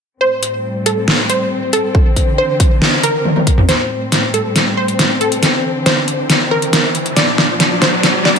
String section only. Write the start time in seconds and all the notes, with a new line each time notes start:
0.21 A2 G3 C4
1.95 D3 E3
3.69 A2 G3 C4
5.43 D3 E3
7.16 A#2 F3 D4